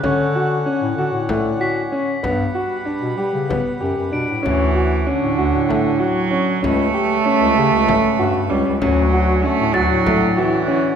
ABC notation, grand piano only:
X:1
M:7/8
L:1/8
Q:1/4=96
K:D
V:1 name="Grand piano"
C F C F A, F C | B, F D G B, G D | C F C F A, F C | C G C G A, F C |
C F C F A, F C |]